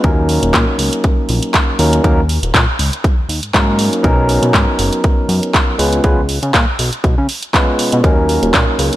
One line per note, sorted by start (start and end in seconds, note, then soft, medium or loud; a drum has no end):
0.03 0.39 D#2 loud
0.03 1.76 F#3 medium
0.03 1.76 A#3 medium
0.03 1.77 C#4 medium
0.03 1.77 D#4 medium
0.03 1.77 A#4 loud
0.03 kick loud
0.03 closed hi-hat medium
0.29 open hi-hat loud
0.43 0.52 D#1 medium
0.43 closed hi-hat medium
0.54 0.65 A#2 medium
0.54 kick loud
0.54 clap loud
0.54 closed hi-hat medium
0.79 0.90 C#2 medium
0.79 open hi-hat loud
0.93 closed hi-hat medium
1.04 kick loud
1.04 closed hi-hat medium
1.29 1.41 A#1 loud
1.29 open hi-hat loud
1.43 closed hi-hat medium
1.54 kick loud
1.54 clap loud
1.54 closed hi-hat medium
1.79 2.00 D#2 medium
1.79 2.01 F#3 medium
1.79 2.01 A#3 medium
1.79 2.02 C#4 medium
1.79 2.02 D#4 medium
1.79 2.02 A#4 medium
1.79 open hi-hat loud
1.93 closed hi-hat medium
2.04 2.39 D#2 medium
2.04 2.20 F#3 medium
2.04 2.20 A#3 medium
2.04 2.20 C#4 medium
2.04 2.20 D#4 medium
2.04 2.20 A#4 loud
2.04 kick loud
2.04 closed hi-hat medium
2.29 open hi-hat loud
2.43 2.52 D#1 medium
2.43 closed hi-hat medium
2.54 2.66 A#2 medium
2.54 kick loud
2.54 clap loud
2.54 closed hi-hat medium
2.79 2.91 C#2 medium
2.79 open hi-hat loud
2.93 closed hi-hat medium
3.04 kick loud
3.04 closed hi-hat soft
3.18 3.27 D#2 soft
3.29 3.40 D#2 medium
3.29 open hi-hat loud
3.42 3.52 G#2 soft
3.42 closed hi-hat medium
3.54 3.89 G#2 medium
3.54 4.01 F#3 medium
3.54 4.01 A#3 medium
3.54 4.01 C#4 medium
3.54 4.01 D#4 medium
3.54 4.02 A#4 loud
3.54 kick loud
3.54 clap loud
3.54 closed hi-hat soft
3.79 open hi-hat loud
3.93 closed hi-hat medium
4.03 4.39 B1 medium
4.03 5.76 F#3 loud
4.03 5.76 B3 medium
4.03 5.76 C#4 medium
4.03 5.77 D#4 medium
4.03 5.77 A#4 loud
4.03 kick loud
4.03 closed hi-hat soft
4.29 open hi-hat loud
4.43 4.52 B2 medium
4.43 closed hi-hat medium
4.54 4.66 G#2 medium
4.54 kick loud
4.54 clap loud
4.54 closed hi-hat medium
4.79 4.90 F#1 medium
4.79 open hi-hat loud
4.93 closed hi-hat medium
5.04 kick loud
5.04 closed hi-hat soft
5.29 5.40 F#2 loud
5.29 open hi-hat loud
5.43 closed hi-hat medium
5.54 kick loud
5.54 clap loud
5.54 closed hi-hat soft
5.78 6.00 C#2 medium
5.78 6.01 G#3 medium
5.78 6.01 B3 medium
5.78 6.01 C#4 medium
5.78 6.01 F4 medium
5.78 6.02 B4 medium
5.78 open hi-hat loud
5.93 closed hi-hat medium
6.04 6.39 C#2 loud
6.04 6.20 G#3 medium
6.04 6.20 B3 medium
6.04 6.20 C#4 medium
6.04 6.20 F4 medium
6.04 6.20 B4 medium
6.04 kick loud
6.04 closed hi-hat soft
6.29 open hi-hat loud
6.43 6.52 C#3 medium
6.43 closed hi-hat medium
6.54 6.65 A#2 loud
6.54 kick loud
6.54 clap loud
6.54 closed hi-hat soft
6.79 6.90 B1 medium
6.79 open hi-hat loud
6.93 closed hi-hat medium
7.04 7.15 B1 medium
7.04 kick loud
7.04 closed hi-hat soft
7.18 7.27 C#3 loud
7.29 open hi-hat loud
7.43 closed hi-hat medium
7.53 8.01 G#3 medium
7.53 8.01 B3 medium
7.53 8.01 C#4 medium
7.53 8.01 F4 medium
7.53 8.02 B4 loud
7.53 kick loud
7.53 clap loud
7.53 closed hi-hat soft
7.79 7.90 B2 soft
7.79 open hi-hat loud
7.92 8.02 B2 medium
7.92 closed hi-hat medium
8.03 8.39 D#2 medium
8.03 8.96 F#3 medium
8.03 8.96 A#3 medium
8.03 8.96 C#4 medium
8.03 8.96 D#4 medium
8.03 8.96 A#4 loud
8.03 kick loud
8.03 closed hi-hat soft
8.29 open hi-hat loud
8.43 8.52 D#1 medium
8.43 closed hi-hat medium
8.54 8.65 A#2 loud
8.54 kick loud
8.54 clap loud
8.54 closed hi-hat soft
8.79 8.90 C#2 medium
8.79 open hi-hat loud
8.93 closed hi-hat medium